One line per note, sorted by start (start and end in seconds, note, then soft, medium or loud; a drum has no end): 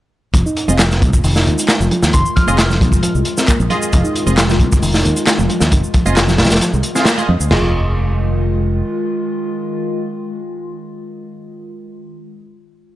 0.34 0.42 F1 loud
0.34 7.47 D#3 medium
0.34 0.44 F3 medium
0.34 7.47 G#3 medium
0.34 7.47 F4 medium
0.34 kick loud
0.34 closed hi-hat medium
0.34 shaker medium
0.46 0.67 D#4 medium
0.46 shaker soft
0.57 closed hi-hat medium
0.68 1.04 F1 medium
0.68 0.79 C4 medium
0.68 0.80 F4 medium
0.68 0.80 G#4 medium
0.68 0.80 D#5 medium
0.68 high conga medium
0.68 low conga medium
0.68 shaker medium
0.79 0.89 F3 medium
0.79 snare loud
0.79 clap loud
0.79 closed hi-hat medium
0.79 shaker medium
0.91 snare soft
0.91 low conga medium
0.91 shaker soft
1.01 1.10 C2 loud
1.01 kick loud
1.01 closed hi-hat medium
1.01 high conga medium
1.13 1.21 F1 medium
1.13 kick loud
1.13 shaker medium
1.24 1.48 F1 medium
1.24 1.35 D#3 loud
1.24 open hi-hat medium
1.24 shaker medium
1.36 1.79 D#4 medium
1.36 snare medium
1.36 shaker soft
1.46 1.54 D#2 medium
1.46 closed hi-hat medium
1.58 closed hi-hat soft
1.58 shaker medium
1.68 snare loud
1.68 clap loud
1.68 closed hi-hat medium
1.68 shaker medium
1.80 1.88 F1 medium
1.80 2.13 F3 loud
1.80 high conga medium
1.80 shaker soft
1.91 closed hi-hat medium
1.91 low conga loud
2.03 2.10 D#2 loud
2.03 snare medium
2.03 shaker medium
2.13 2.22 F1 loud
2.13 2.25 D#3 loud
2.13 2.31 C6 medium
2.13 kick loud
2.13 closed hi-hat medium
2.13 shaker medium
2.26 shaker soft
2.36 2.47 F3 medium
2.36 2.43 F6 medium
2.36 kick medium
2.36 closed hi-hat medium
2.47 2.83 F1 medium
2.47 2.56 C4 medium
2.47 2.59 F4 medium
2.47 2.59 G#4 medium
2.47 2.59 D#5 loud
2.47 2.55 F6 medium
2.47 high conga loud
2.47 low conga loud
2.47 shaker medium
2.58 snare loud
2.58 clap loud
2.58 closed hi-hat medium
2.58 shaker medium
2.70 3.02 F3 loud
2.70 snare soft
2.70 low conga loud
2.70 shaker soft
2.80 2.89 C2 loud
2.80 kick loud
2.80 closed hi-hat medium
2.80 high conga medium
2.92 3.00 F1 medium
2.92 kick medium
2.92 shaker medium
3.03 3.13 F3 medium
3.03 closed hi-hat medium
3.03 shaker medium
3.15 3.22 C2 medium
3.15 3.23 G#3 medium
3.15 shaker soft
3.25 closed hi-hat medium
3.38 3.46 C4 medium
3.38 snare soft
3.38 shaker medium
3.48 3.57 A#3 loud
3.48 kick medium
3.48 clap loud
3.48 closed hi-hat medium
3.48 shaker medium
3.60 3.67 A#1 loud
3.60 high conga medium
3.60 shaker soft
3.70 4.24 F4 medium
3.70 4.24 G#4 medium
3.70 4.24 D#5 loud
3.70 closed hi-hat medium
3.70 low conga medium
3.82 shaker medium
3.93 4.01 F1 loud
3.93 4.02 F3 medium
3.93 kick loud
3.93 closed hi-hat medium
3.93 shaker medium
4.04 4.25 D#4 medium
4.04 shaker soft
4.16 closed hi-hat medium
4.26 4.61 F1 medium
4.26 4.37 C4 medium
4.26 4.38 F4 medium
4.26 4.38 G#4 medium
4.26 4.38 D#5 medium
4.26 high conga medium
4.26 low conga medium
4.26 shaker medium
4.37 4.47 F3 medium
4.37 snare loud
4.37 clap loud
4.37 closed hi-hat medium
4.37 shaker medium
4.50 snare soft
4.50 low conga loud
4.50 shaker soft
4.60 4.68 C2 loud
4.60 kick medium
4.60 closed hi-hat medium
4.60 high conga medium
4.72 4.79 F1 medium
4.72 kick loud
4.72 shaker medium
4.82 5.07 F1 medium
4.82 4.93 D#3 loud
4.82 open hi-hat medium
4.82 shaker medium
4.94 5.38 D#4 medium
4.94 snare medium
4.94 shaker soft
5.05 5.13 D#2 medium
5.05 closed hi-hat medium
5.16 closed hi-hat soft
5.16 shaker medium
5.27 snare loud
5.27 clap loud
5.27 closed hi-hat medium
5.27 shaker medium
5.38 5.46 F1 medium
5.38 5.71 F3 loud
5.38 high conga medium
5.38 shaker soft
5.49 closed hi-hat medium
5.49 low conga medium
5.60 5.69 D#2 loud
5.60 snare medium
5.60 shaker medium
5.72 5.80 F1 loud
5.72 5.83 D#3 loud
5.72 kick loud
5.72 closed hi-hat loud
5.72 shaker medium
5.84 shaker soft
5.94 6.05 F3 medium
5.94 kick loud
5.94 closed hi-hat medium
6.06 6.41 F1 medium
6.06 6.14 C4 medium
6.06 6.17 F4 medium
6.06 6.17 G#4 medium
6.06 6.17 D#5 loud
6.06 high conga medium
6.06 low conga loud
6.06 shaker medium
6.16 snare loud
6.16 clap loud
6.16 closed hi-hat medium
6.16 shaker medium
6.28 6.60 F3 loud
6.28 snare soft
6.28 low conga medium
6.28 shaker soft
6.38 6.47 C2 loud
6.38 snare loud
6.38 closed hi-hat medium
6.38 high conga medium
6.44 snare medium
6.44 closed hi-hat medium
6.50 6.58 F1 medium
6.50 snare medium
6.50 closed hi-hat medium
6.50 shaker medium
6.55 snare medium
6.55 closed hi-hat medium
6.61 6.71 F3 medium
6.61 closed hi-hat medium
6.61 shaker medium
6.73 6.81 C2 medium
6.73 6.82 G#3 medium
6.73 shaker soft
6.83 closed hi-hat medium
6.95 7.04 C4 medium
6.95 7.07 F4 medium
6.95 7.07 G#4 medium
6.95 7.07 F5 loud
6.95 snare soft
6.95 shaker medium
7.05 7.15 A#3 loud
7.05 snare loud
7.05 clap loud
7.05 closed hi-hat medium
7.05 shaker medium
7.18 7.29 F4 loud
7.18 7.29 G#4 medium
7.18 7.29 D#5 loud
7.18 high conga medium
7.18 shaker soft
7.29 7.37 F2 loud
7.29 low conga medium
7.40 7.48 D2 medium
7.40 shaker medium
7.51 8.81 F1 loud
7.51 11.85 D#3 medium
7.51 7.72 F3 medium
7.51 11.85 G#3 medium
7.51 12.43 F4 medium
7.51 11.85 F4 medium
7.51 12.43 G#4 medium
7.51 12.43 D#5 loud
7.51 snare loud
7.51 floor tom loud
7.51 china medium